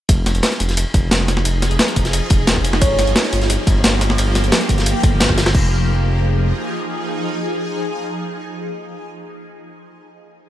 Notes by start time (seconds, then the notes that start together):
0.09 F1 F3 D#4 G#4, kick, closed hi-hat, ride
0.26 snare, closed hi-hat, ride
0.35 F1, closed hi-hat
0.43 snare, closed hi-hat, ride
0.52 snare, closed hi-hat
0.60 F1, closed hi-hat, ride
0.69 snare, closed hi-hat
0.77 closed hi-hat, ride
0.94 F1, kick, closed hi-hat, ride
1.11 snare, closed hi-hat, ride
1.20 F1
1.28 snare, closed hi-hat, ride
1.37 snare
1.45 F1, closed hi-hat, ride
1.62 snare, closed hi-hat, ride
1.71 F1, closed hi-hat
1.79 snare, closed hi-hat, ride
1.88 closed hi-hat
1.96 F1, kick, closed hi-hat, ride
2.05 snare, closed hi-hat
2.13 closed hi-hat, ride
2.30 F1, kick, closed hi-hat, ride
2.47 snare, closed hi-hat, ride
2.56 F1, kick, snare
2.64 closed hi-hat, ride
2.73 snare
2.81 G1 A#3 G4 C#5, kick, closed hi-hat, ride
2.99 snare, closed hi-hat, ride
3.07 G1, closed hi-hat
3.16 snare, closed hi-hat, ride
3.24 snare, closed hi-hat
3.32 G1, closed hi-hat, ride
3.42 snare, closed hi-hat
3.50 closed hi-hat, ride
3.67 G1, kick, closed hi-hat, ride
3.84 snare, closed hi-hat, ride
3.93 G1
4.01 snare, closed hi-hat, ride
4.10 snare
4.18 G1, closed hi-hat, ride
4.35 snare, closed hi-hat, ride
4.44 G1, closed hi-hat
4.52 snare, closed hi-hat, ride
4.61 closed hi-hat
4.69 G1, kick, closed hi-hat, ride
4.78 snare, closed hi-hat
4.86 closed hi-hat, ride
5.03 G1, kick, closed hi-hat, ride
5.20 snare, closed hi-hat, ride
5.29 G1, kick, snare
5.38 snare, closed hi-hat, ride
5.46 snare, ride
5.55 F1 F3 D#4 G#4, kick, crash